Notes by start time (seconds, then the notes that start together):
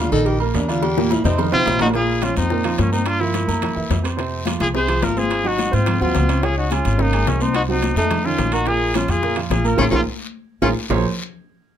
0.00 D4 F4 D5
0.12 A#1 D#3 D#4 A4 D#5, cowbell, high conga, short guiro
0.26 G4, cowbell, high conga, low agogo, long guiro
0.40 A#3 A#4 A#5, high conga, low agogo
0.54 E2 D4, cowbell, low timbale, short guiro
0.68 D3 D4 F4 D5, low agogo, short guiro
0.83 G4, cowbell, high bongo, high conga, low agogo, long guiro
0.97 A#2 A#3 A#4, high bongo
1.10 E4, cowbell, high bongo, high conga, low timbale, low agogo, short guiro
1.24 F2 C3 C4 D#4 C5, cowbell, low bongo, short guiro
1.38 D#3 D#4 D#5, cowbell, low bongo, high conga, low conga, low agogo, long guiro
1.52 C2 C3 C4 F4 C5, high conga, low conga, high timbale
1.66 A#1, cowbell, low bongo, high conga, low timbale, low agogo, short guiro
1.79 A#2 A#3 D#4 F#4 A#4, cowbell, low bongo, high conga, low timbale, low agogo, short guiro
1.93 A#2 A#3 F4 G#4 A#4, high bongo, high conga, high timbale, long guiro
2.10 high conga
2.22 F3 C#4 F4 F5, high bongo, high conga, high timbale, short guiro
2.36 F2 C4 D#4, high conga, high timbale, short guiro
2.50 A#2 A#3 A#4, high bongo, high conga, long guiro
2.64 F3 F4 F5, high timbale
2.78 G2 A#3 C#4, high bongo, low bongo, high conga, high timbale, low timbale, short guiro
2.92 A#3 C4 D#4 A#4 A#5, high conga, short guiro
3.06 D4 F4, high bongo, high conga, high timbale, long guiro
3.20 F3 A#3 E4 F4 F5, high bongo, high conga
3.34 high bongo, high conga, high timbale, short guiro
3.48 F#2 A#3 A#4 A#5, high bongo, high conga, short guiro
3.62 high bongo, high conga, low conga, high timbale, long guiro
3.75 F#2 E3 E4 E5, high bongo, high conga
3.90 F2, high bongo, low bongo, high conga, high timbale, low timbale, short guiro
4.03 C4 C5 C6, high conga, high timbale, short guiro
4.17 C3 C4 C5, high bongo, high conga, high timbale, long guiro
4.33 high conga
4.45 F3 F4 F5, high bongo, high conga, high timbale, short guiro
4.60 C2 F4 G#4, high conga, high timbale, short guiro
4.74 C3 C4 G#4 C5, high bongo, high conga, long guiro
4.88 F3 F4 F5, high conga, high timbale
5.02 G#1 F4 A#4, high bongo, low bongo, high conga, high timbale, low timbale, short guiro
5.17 C4 F4 G#4 C5 C6, high conga, short guiro
5.31 high bongo, high conga, high timbale, long guiro
5.44 F#3 D#4 F#4 F#5, high bongo, high conga
5.58 high bongo, high conga, high timbale, short guiro
5.72 G#2 C4 F4 C5 C6, high bongo, high conga, short guiro
5.86 high bongo, high conga, low conga, high timbale, long guiro
6.00 D#2 F#3 C4 F4 F#4 F#5, high bongo, high conga, low conga
6.15 C#2, high bongo, low bongo, high conga, high timbale, low timbale, short guiro
6.28 C#4 C#5 C#6, high conga, high timbale, short guiro
6.43 C#3 C#4 F4 G#4 C#5, high bongo, high conga, high timbale, long guiro
6.57 D#4 F#4, high conga
6.71 G#3 C#4 F4 G#4 G#5, high bongo, high conga, high timbale, short guiro
6.85 G#1, high conga, high timbale, short guiro
6.98 C#3 A#3 C#4 D#4 C#5, high bongo, high conga, long guiro
7.13 G#3 G#4 G#5, high conga, high timbale
7.27 C2 A#3 C#4, high bongo, low bongo, high conga, high timbale, low timbale, short guiro
7.40 C4 D#4 C5 C6, high conga, short guiro
7.54 D#4 F#4, high bongo, high conga, high timbale, long guiro
7.69 F#3 C4 D#4 F#4 F#5, high bongo, high conga
7.82 high bongo, high conga, high timbale, short guiro
7.95 F2 A3 D#4 A4 A5, high bongo, high conga, short guiro
8.11 high bongo, high conga, low conga, high timbale, long guiro
8.24 D#3 C#4 D#4 F4 D#5, high bongo, high conga
8.38 A#1, high bongo, low bongo, high conga, high timbale, low timbale, short guiro
8.52 A#3 D#4 F#4 A#4 A#5, high conga, high timbale, short guiro
8.66 A#2 A#3 F4 G#4 A#4, high bongo, high conga, high timbale, long guiro
8.82 high conga
8.94 F3 C#4 F4 F5, high bongo, high conga, high timbale, short guiro
9.08 F2 F4 G#4, high conga, high timbale, short guiro
9.22 A#2 A#3 A#4, high bongo, high conga, long guiro
9.36 F3 F4 F5, high conga, high timbale
9.50 A#1 F4 G#4, high bongo, low bongo, high conga, high timbale, short guiro
9.64 A#3 F4 A#4 A#5, high conga, short guiro
9.77 A#1 C#4 F4 G#4 A#4, low bongo, high conga, high timbale, long guiro
9.91 A#1 C#4 F4 G#4 A#4, low bongo, high conga, high timbale, long guiro
10.62 A#1 C#4 F4 G#4 A#4, low bongo, high conga, high timbale, long guiro
10.90 A#1 A#3 F4 G#4 A#4 C5 C#5, low bongo, low conga, low timbale, long guiro